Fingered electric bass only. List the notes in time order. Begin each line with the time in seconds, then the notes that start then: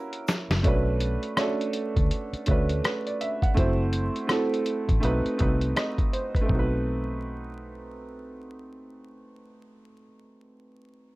0.50 F#1
0.65 B1
1.97 D2
2.33 muted fingered electric bass stroke
2.48 D2
3.57 F#1
4.89 A1
5.03 B1
5.25 muted fingered electric bass stroke
5.41 C2
6.50 B1